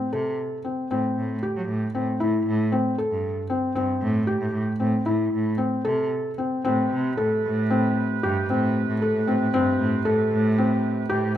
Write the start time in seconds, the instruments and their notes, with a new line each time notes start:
0.13 cello C3, felt piano A4
0.65 felt piano C4
0.91 cello A2, felt piano C4
1.18 cello A2
1.43 felt piano G4
1.56 cello F#3
1.69 cello A2
1.95 cello A2, felt piano C4
2.20 cello A2, felt piano E4
2.47 cello A2
2.72 felt piano C4
2.98 felt piano A4
3.11 cello G2
3.50 felt piano C4
3.75 cello G2, felt piano C4
4.02 cello A2
4.27 felt piano G4
4.41 cello A2
4.53 cello A2
4.80 cello A2, felt piano C4
5.06 cello A2, felt piano E4
5.33 cello A2
5.58 felt piano C4
5.85 cello C3, felt piano A4
6.38 felt piano C4
6.65 cello A2, woodwind section C3 G4 B4, felt piano C4
6.92 cello C3
7.17 cello A2, felt piano A4
7.45 cello A2
7.70 felt piano C4
8.23 cello G2, felt piano G4
8.50 cello A2, felt piano C4
8.89 cello A2
9.02 felt piano A4
9.15 cello A2
9.27 cello A2, felt piano C4
9.41 cello A2
9.53 cello G2, felt piano C4
9.79 cello A2
10.05 cello A2, felt piano A4
10.31 cello A2
10.58 felt piano C4
11.09 cello A2, felt piano G4